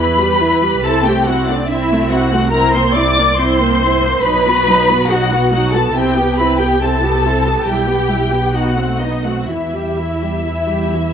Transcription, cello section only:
0.00 0.82 B4 medium
0.84 1.06 A4 medium
1.08 1.28 G4 medium
1.26 1.48 F#4 medium
1.48 1.69 D4 medium
1.69 2.10 E4 medium
2.10 2.52 F#4 medium
2.52 2.73 A#4 medium
2.73 2.95 C5 medium
2.95 3.38 D5 medium
3.37 4.24 C5 medium
4.23 5.10 B4 medium
5.10 5.50 F#4 medium
5.51 5.73 F#4 medium
5.74 5.87 A4 medium
5.88 5.95 A4 medium
5.95 6.37 G4 medium
6.38 6.59 B4 medium
6.60 6.81 G4 medium
6.81 7.66 A4 medium
7.67 8.54 G4 medium
8.54 9.00 F#4 medium
9.01 9.24 D#4 medium
9.25 9.48 F#4 soft
9.49 11.13 E4 soft

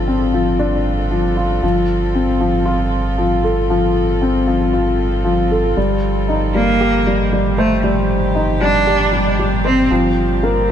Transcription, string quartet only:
0.00 5.77 G3 medium
0.00 7.42 C4 medium
0.00 7.00 F4 medium
0.00 7.42 A4 medium
5.77 9.91 F3 medium
6.20 10.72 A#2 medium
6.20 9.91 D#3 medium
6.81 10.72 G4 medium
9.90 10.72 G3 medium
10.12 10.72 C4 medium
10.19 10.72 F4 medium

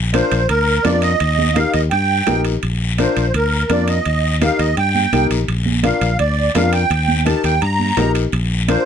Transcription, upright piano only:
0.13 0.38 D4 medium
0.13 0.39 F4 medium
0.13 0.39 A#4 medium
0.85 1.10 D4 medium
0.85 1.10 F4 medium
0.85 1.10 A#4 medium
1.56 1.81 D#4 medium
1.56 1.81 G4 medium
1.56 1.81 A#4 medium
2.27 2.52 D#4 medium
2.27 2.52 G4 medium
2.27 2.52 A#4 medium
2.98 3.24 D4 medium
2.98 3.24 F4 medium
2.98 3.24 A#4 medium
3.70 3.95 D4 medium
3.70 3.95 F4 medium
3.70 3.95 A#4 medium
4.41 4.66 D#4 medium
4.41 4.66 G4 medium
4.41 4.67 A#4 medium
5.13 5.38 D#4 medium
5.13 5.38 G4 medium
5.13 5.38 A#4 medium
5.83 6.08 D4 medium
5.83 6.09 F4 medium
5.83 6.09 A#4 medium
6.55 6.80 D4 medium
6.55 6.80 F4 medium
6.55 6.80 A#4 medium
7.25 7.51 D#4 medium
7.25 7.51 G4 medium
7.25 7.51 A#4 medium
7.97 8.22 D#4 medium
7.97 8.22 G4 medium
7.97 8.23 A#4 medium
8.68 8.85 D4 medium
8.68 8.85 F4 medium
8.68 8.85 A#4 medium

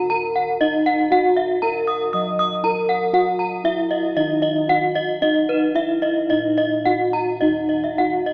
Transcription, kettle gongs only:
0.00 2.11 D#2 medium
0.00 0.57 A#4 medium
0.62 0.70 E4 soft
1.12 2.60 F#4 medium
1.63 1.71 E4 soft
2.14 3.61 F#3 medium
2.63 2.71 E4 soft
3.13 4.64 F#4 medium
3.65 3.73 E4 soft
4.16 5.71 D#3 medium
4.69 4.77 E4 soft
5.22 6.82 D#4 medium
5.76 5.84 E4 soft
6.30 7.94 A#2 medium
6.86 6.94 E4 soft
7.42 8.33 D#4 medium
7.47 8.33 D#2 medium
7.98 8.06 E4 soft

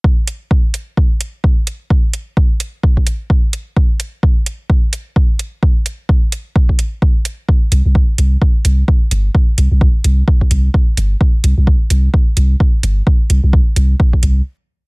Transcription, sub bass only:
7.72 7.82 C2 loud
7.86 8.02 C2 medium
8.18 8.37 C2 medium
8.65 8.83 C2 medium
9.11 9.30 G1 medium
9.58 9.68 C2 medium
9.71 9.88 C2 medium
10.04 10.23 C2 medium
10.51 10.69 C2 medium
10.97 11.16 G1 medium
11.44 11.54 C2 medium
11.58 11.74 C2 medium
11.90 12.09 C2 medium
12.37 12.55 C2 medium
12.83 13.02 G1 medium
13.30 13.40 C2 medium
13.44 13.60 C2 medium
13.76 13.95 C2 medium
14.23 14.41 C2 medium

